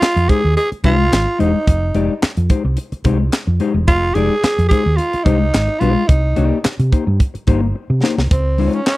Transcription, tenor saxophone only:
0, 0, Header, 1, 2, 480
1, 0, Start_track
1, 0, Key_signature, -4, "minor"
1, 0, Tempo, 553506
1, 1451, Time_signature, 4, 2, 24, 8
1, 7781, End_track
2, 0, Start_track
2, 0, Title_t, "Tenor saxophone"
2, 0, Program_c, 0, 66
2, 0, Note_on_c, 0, 65, 116
2, 254, Note_on_c, 0, 68, 117
2, 267, Note_off_c, 0, 65, 0
2, 489, Note_off_c, 0, 68, 0
2, 494, Note_on_c, 0, 68, 105
2, 602, Note_off_c, 0, 68, 0
2, 738, Note_on_c, 0, 65, 106
2, 1212, Note_on_c, 0, 63, 90
2, 1225, Note_off_c, 0, 65, 0
2, 1930, Note_off_c, 0, 63, 0
2, 3365, Note_on_c, 0, 65, 110
2, 3592, Note_on_c, 0, 68, 123
2, 3605, Note_off_c, 0, 65, 0
2, 4060, Note_off_c, 0, 68, 0
2, 4065, Note_on_c, 0, 68, 107
2, 4306, Note_on_c, 0, 65, 99
2, 4319, Note_off_c, 0, 68, 0
2, 4542, Note_on_c, 0, 63, 92
2, 4555, Note_off_c, 0, 65, 0
2, 5025, Note_on_c, 0, 65, 102
2, 5038, Note_off_c, 0, 63, 0
2, 5269, Note_on_c, 0, 63, 80
2, 5282, Note_off_c, 0, 65, 0
2, 5759, Note_off_c, 0, 63, 0
2, 7217, Note_on_c, 0, 60, 77
2, 7582, Note_on_c, 0, 61, 77
2, 7595, Note_off_c, 0, 60, 0
2, 7690, Note_off_c, 0, 61, 0
2, 7696, Note_on_c, 0, 61, 88
2, 7781, Note_off_c, 0, 61, 0
2, 7781, End_track
0, 0, End_of_file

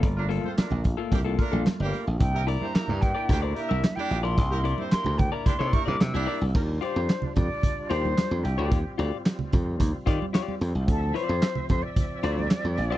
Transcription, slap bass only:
0, 0, Header, 1, 3, 480
1, 0, Start_track
1, 0, Tempo, 542005
1, 28, Time_signature, 4, 2, 24, 8
1, 11492, End_track
2, 0, Start_track
2, 0, Title_t, "Slap bass"
2, 0, Program_c, 0, 36
2, 26, Note_on_c, 0, 31, 107
2, 334, Note_off_c, 0, 31, 0
2, 632, Note_on_c, 0, 34, 86
2, 836, Note_off_c, 0, 34, 0
2, 990, Note_on_c, 0, 36, 87
2, 1195, Note_off_c, 0, 36, 0
2, 1352, Note_on_c, 0, 34, 85
2, 1454, Note_off_c, 0, 34, 0
2, 1593, Note_on_c, 0, 31, 95
2, 1694, Note_off_c, 0, 31, 0
2, 1836, Note_on_c, 0, 34, 79
2, 1937, Note_off_c, 0, 34, 0
2, 1955, Note_on_c, 0, 36, 103
2, 2260, Note_off_c, 0, 36, 0
2, 2561, Note_on_c, 0, 43, 93
2, 2762, Note_off_c, 0, 43, 0
2, 2915, Note_on_c, 0, 38, 95
2, 3119, Note_off_c, 0, 38, 0
2, 3283, Note_on_c, 0, 36, 89
2, 3381, Note_off_c, 0, 36, 0
2, 3638, Note_on_c, 0, 34, 88
2, 3739, Note_off_c, 0, 34, 0
2, 3760, Note_on_c, 0, 34, 77
2, 3879, Note_off_c, 0, 34, 0
2, 3879, Note_on_c, 0, 36, 106
2, 4184, Note_off_c, 0, 36, 0
2, 4479, Note_on_c, 0, 38, 94
2, 4682, Note_off_c, 0, 38, 0
2, 4962, Note_on_c, 0, 48, 99
2, 5062, Note_off_c, 0, 48, 0
2, 5205, Note_on_c, 0, 48, 106
2, 5303, Note_off_c, 0, 48, 0
2, 5322, Note_on_c, 0, 48, 89
2, 5422, Note_off_c, 0, 48, 0
2, 5441, Note_on_c, 0, 36, 93
2, 5541, Note_off_c, 0, 36, 0
2, 5680, Note_on_c, 0, 36, 80
2, 5781, Note_off_c, 0, 36, 0
2, 5800, Note_on_c, 0, 39, 111
2, 6003, Note_off_c, 0, 39, 0
2, 6165, Note_on_c, 0, 41, 92
2, 6263, Note_off_c, 0, 41, 0
2, 6523, Note_on_c, 0, 41, 90
2, 6623, Note_off_c, 0, 41, 0
2, 7001, Note_on_c, 0, 39, 100
2, 7203, Note_off_c, 0, 39, 0
2, 7361, Note_on_c, 0, 41, 93
2, 7461, Note_off_c, 0, 41, 0
2, 7481, Note_on_c, 0, 36, 101
2, 7581, Note_off_c, 0, 36, 0
2, 7603, Note_on_c, 0, 38, 94
2, 7721, Note_off_c, 0, 38, 0
2, 7721, Note_on_c, 0, 39, 97
2, 7821, Note_off_c, 0, 39, 0
2, 7960, Note_on_c, 0, 38, 96
2, 8061, Note_off_c, 0, 38, 0
2, 8442, Note_on_c, 0, 41, 89
2, 8644, Note_off_c, 0, 41, 0
2, 8678, Note_on_c, 0, 39, 100
2, 8779, Note_off_c, 0, 39, 0
2, 8916, Note_on_c, 0, 51, 94
2, 9018, Note_off_c, 0, 51, 0
2, 9398, Note_on_c, 0, 41, 98
2, 9499, Note_off_c, 0, 41, 0
2, 9520, Note_on_c, 0, 36, 83
2, 9636, Note_off_c, 0, 36, 0
2, 9636, Note_on_c, 0, 38, 112
2, 9840, Note_off_c, 0, 38, 0
2, 10000, Note_on_c, 0, 41, 95
2, 10100, Note_off_c, 0, 41, 0
2, 10361, Note_on_c, 0, 41, 88
2, 10460, Note_off_c, 0, 41, 0
2, 10836, Note_on_c, 0, 38, 91
2, 11040, Note_off_c, 0, 38, 0
2, 11201, Note_on_c, 0, 41, 88
2, 11300, Note_off_c, 0, 41, 0
2, 11319, Note_on_c, 0, 34, 86
2, 11439, Note_off_c, 0, 34, 0
2, 11439, Note_on_c, 0, 36, 80
2, 11492, Note_off_c, 0, 36, 0
2, 11492, End_track
3, 0, Start_track
3, 0, Title_t, "Muted slap bass strokes"
3, 514, Note_on_c, 9, 29, 49
3, 602, Note_off_c, 9, 29, 0
3, 1473, Note_on_c, 9, 29, 48
3, 1561, Note_off_c, 9, 29, 0
3, 2436, Note_on_c, 9, 29, 46
3, 2525, Note_off_c, 9, 29, 0
3, 4363, Note_on_c, 9, 29, 47
3, 4452, Note_off_c, 9, 29, 0
3, 6405, Note_on_c, 9, 29, 48
3, 6494, Note_off_c, 9, 29, 0
3, 10237, Note_on_c, 9, 29, 45
3, 10325, Note_off_c, 9, 29, 0
3, 11492, End_track
0, 0, End_of_file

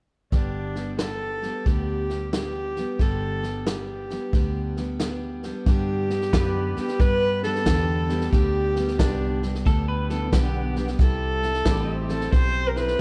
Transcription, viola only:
0, 0, Header, 1, 2, 480
1, 0, Start_track
1, 0, Key_signature, 1, "major"
1, 0, Tempo, 667408
1, 230, Time_signature, 4, 2, 24, 8
1, 9356, End_track
2, 0, Start_track
2, 0, Title_t, "Viola"
2, 0, Program_c, 0, 41
2, 231, Note_on_c, 0, 62, 81
2, 682, Note_off_c, 0, 62, 0
2, 718, Note_on_c, 0, 69, 95
2, 1201, Note_on_c, 0, 67, 91
2, 1212, Note_off_c, 0, 69, 0
2, 1677, Note_off_c, 0, 67, 0
2, 1681, Note_on_c, 0, 67, 95
2, 2162, Note_on_c, 0, 69, 88
2, 2172, Note_off_c, 0, 67, 0
2, 2633, Note_on_c, 0, 67, 76
2, 2644, Note_off_c, 0, 69, 0
2, 3593, Note_off_c, 0, 67, 0
2, 4090, Note_on_c, 0, 67, 104
2, 4844, Note_off_c, 0, 67, 0
2, 4878, Note_on_c, 0, 67, 105
2, 5036, Note_on_c, 0, 71, 127
2, 5047, Note_off_c, 0, 67, 0
2, 5345, Note_off_c, 0, 71, 0
2, 5349, Note_on_c, 0, 69, 112
2, 5964, Note_off_c, 0, 69, 0
2, 5986, Note_on_c, 0, 67, 108
2, 6465, Note_on_c, 0, 62, 83
2, 6476, Note_off_c, 0, 67, 0
2, 6946, Note_off_c, 0, 62, 0
2, 7917, Note_on_c, 0, 69, 105
2, 8609, Note_off_c, 0, 69, 0
2, 8631, Note_on_c, 0, 67, 66
2, 8702, Note_on_c, 0, 69, 100
2, 8713, Note_off_c, 0, 67, 0
2, 8868, Note_off_c, 0, 69, 0
2, 8872, Note_on_c, 0, 72, 125
2, 9122, Note_on_c, 0, 70, 68
2, 9133, Note_off_c, 0, 72, 0
2, 9180, Note_on_c, 0, 71, 115
2, 9191, Note_off_c, 0, 70, 0
2, 9356, Note_off_c, 0, 71, 0
2, 9356, End_track
0, 0, End_of_file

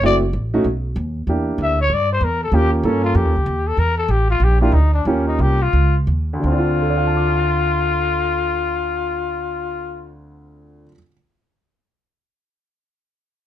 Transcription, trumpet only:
0, 0, Header, 1, 2, 480
1, 0, Start_track
1, 0, Key_signature, -1, "minor"
1, 0, Tempo, 313152
1, 46, Time_signature, 4, 2, 24, 8
1, 6766, Tempo, 329670
1, 8686, Tempo, 366077
1, 18826, End_track
2, 0, Start_track
2, 0, Title_t, "Trumpet"
2, 0, Program_c, 0, 56
2, 87, Note_on_c, 0, 74, 93
2, 254, Note_off_c, 0, 74, 0
2, 2483, Note_on_c, 0, 76, 82
2, 2742, Note_off_c, 0, 76, 0
2, 2773, Note_on_c, 0, 73, 92
2, 2964, Note_on_c, 0, 74, 92
2, 2987, Note_off_c, 0, 73, 0
2, 3242, Note_off_c, 0, 74, 0
2, 3256, Note_on_c, 0, 72, 81
2, 3433, Note_on_c, 0, 70, 78
2, 3456, Note_off_c, 0, 72, 0
2, 3717, Note_off_c, 0, 70, 0
2, 3727, Note_on_c, 0, 69, 79
2, 3908, Note_on_c, 0, 67, 85
2, 3931, Note_off_c, 0, 69, 0
2, 4183, Note_off_c, 0, 67, 0
2, 4192, Note_on_c, 0, 58, 46
2, 4383, Note_on_c, 0, 61, 68
2, 4406, Note_off_c, 0, 58, 0
2, 4650, Note_off_c, 0, 61, 0
2, 4659, Note_on_c, 0, 65, 83
2, 4835, Note_on_c, 0, 67, 74
2, 4858, Note_off_c, 0, 65, 0
2, 5632, Note_on_c, 0, 69, 88
2, 5655, Note_off_c, 0, 67, 0
2, 5808, Note_on_c, 0, 70, 96
2, 5831, Note_off_c, 0, 69, 0
2, 6086, Note_off_c, 0, 70, 0
2, 6095, Note_on_c, 0, 69, 85
2, 6290, Note_on_c, 0, 67, 76
2, 6313, Note_off_c, 0, 69, 0
2, 6586, Note_off_c, 0, 67, 0
2, 6594, Note_on_c, 0, 65, 81
2, 6796, Note_on_c, 0, 67, 83
2, 6818, Note_off_c, 0, 65, 0
2, 7050, Note_off_c, 0, 67, 0
2, 7058, Note_on_c, 0, 65, 74
2, 7228, Note_on_c, 0, 63, 67
2, 7250, Note_off_c, 0, 65, 0
2, 7520, Note_off_c, 0, 63, 0
2, 7528, Note_on_c, 0, 62, 75
2, 7712, Note_on_c, 0, 61, 66
2, 7734, Note_off_c, 0, 62, 0
2, 8009, Note_off_c, 0, 61, 0
2, 8022, Note_on_c, 0, 63, 76
2, 8214, Note_on_c, 0, 67, 83
2, 8236, Note_off_c, 0, 63, 0
2, 8526, Note_on_c, 0, 65, 75
2, 8548, Note_off_c, 0, 67, 0
2, 8983, Note_off_c, 0, 65, 0
2, 9628, Note_on_c, 0, 65, 87
2, 14471, Note_off_c, 0, 65, 0
2, 18826, End_track
0, 0, End_of_file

